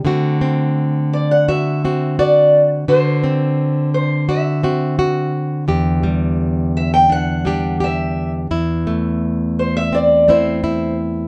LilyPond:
<<
  \new Staff \with { instrumentName = "Steel-string acoustic guitar" } { \time 4/4 \key d \mixolydian \tempo 4 = 85 r4. d''16 fis''16 e''4 d''8. r16 | c''4. c''8 e''4. r8 | r4. e''16 g''16 fis''4 e''8. r16 | r4. c''16 e''16 d''8 c''4 r8 | }
  \new Staff \with { instrumentName = "Nylon-string guitar" } { \time 4/4 \key d \mixolydian << { <a c' fis'>8 c'4. fis'8 <c' fis'>8 fis'4 | fis'8 c'4. fis'8 <c' fis'>8 fis'4 | g'8 g4. d'8 <g d' g'>8 g'4 | e'8 a4. c'8 <a c' e'>8 e'4 | } \\ { d1 | d1 | e,1 | e,1 | } >> }
>>